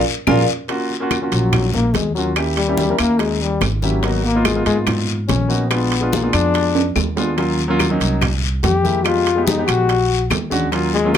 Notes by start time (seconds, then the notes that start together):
0.27 A#1 F4 G#4 A#4 D5 F5, high bongo, low conga, high timbale, long guiro, claves
0.68 A#3 C#4 F4 F#4, high bongo, high conga, high timbale, long guiro
0.90 high bongo, high conga
1.00 A#3 C#4 F4 F#4
1.11 high bongo, high conga, high timbale, low timbale, short guiro, claves
1.21 A#3 C#4 F4 F#4
1.32 A#1 F#3, high bongo, high timbale, short guiro
1.53 high bongo, high conga, low conga, high timbale, long guiro, claves
1.74 A#3, high conga, low conga
1.94 D#2 G#3, high bongo, low bongo, high conga, high timbale, low timbale, short guiro
2.15 F#3 A#3 C#4 F4 F#4, high bongo, short guiro
2.36 A#3 C#4 E4 G4, high bongo, high conga, high timbale, long guiro, claves
2.57 G3, high bongo, high conga, high timbale
2.67 A#3 C#4 E4 G4
2.77 high bongo, high conga, low timbale, short guiro
2.89 A#3 C#4 E4 A#4
2.99 D#2 A#3, high bongo, high timbale, short guiro, claves
3.19 G#3, high bongo, high conga, high timbale, long guiro
3.40 G3, high conga
3.61 G#1, high bongo, low bongo, high conga, high timbale, low timbale, short guiro, claves
3.82 F#3 A#3 C#4 E4 G4, high bongo, high conga, short guiro
4.03 A#3 B3 D#4 F#4, high bongo, high conga, high timbale, long guiro
4.24 A#3, high bongo, high conga
4.34 A#3 B3 D#4 F4
4.45 G#3, high bongo, high conga, high timbale, low timbale, short guiro, claves
4.54 A#3 B3 D#4 F4
4.66 G#2 G#3, high bongo, high timbale, short guiro
4.87 high bongo, high conga, low conga, high timbale, long guiro, claves
5.09 high conga
5.28 A#1 C#4, high bongo, low bongo, high conga, high timbale, low timbale, short guiro
5.48 A#3 B3 D#4 F#4, high bongo, short guiro
5.70 G#3 B3 D4 F4, high bongo, high conga, high timbale, long guiro, claves
5.92 high bongo, high conga, high timbale
6.01 G#3 B3 D4 F4
6.12 A#3, high bongo, high conga, low timbale, short guiro
6.22 G#3 B3 D4 F4
6.33 F2 D4, high timbale, short guiro, claves
6.54 high bongo, high conga, high timbale, long guiro
6.75 high conga, high timbale
6.96 D#2, high bongo, low bongo, high conga, low timbale, short guiro, claves
7.16 G#3 B3 D4 F4, high bongo, low timbale, short guiro
7.36 F#3 A#3 C#4 F4, high bongo, high conga, high timbale, long guiro
7.59 high bongo, high conga
7.68 F#3 A#3 C#4 F4
7.79 high bongo, high conga, high timbale, low timbale, short guiro, claves
7.89 F#3 A#3 C#4 D#4
8.00 C2, high bongo, high timbale, short guiro
8.21 high bongo, high conga, low conga, high timbale, long guiro, claves
8.44 high conga
8.63 F2 G4, high bongo, low bongo, high conga, high timbale, low timbale, short guiro
8.84 G#3 A#3 E4 G4, high bongo, high conga, short guiro
9.04 G#3 B3 D#4 F4 G4, high bongo, high conga, high timbale, long guiro, claves
9.27 high bongo, high conga, high timbale
9.35 G#3 B3 D#4 G4
9.47 D#4, high bongo, high conga, low timbale, short guiro
9.57 G#3 B3 D#4 G4
9.67 A#1 F#4, high timbale, short guiro, claves
9.89 high bongo, high conga, high timbale, long guiro
10.10 high conga
10.30 D#2, high bongo, low bongo, high conga, high timbale, low timbale, short guiro, claves
10.50 G#3 C#4 D4 F#4, high bongo, high conga, short guiro
10.72 F#3 A#3 C#4 F4, high bongo, high conga, high timbale, long guiro
10.94 G#3, high bongo, high conga
11.04 F#3 A#3 C#4 F4
11.14 high bongo, short guiro, claves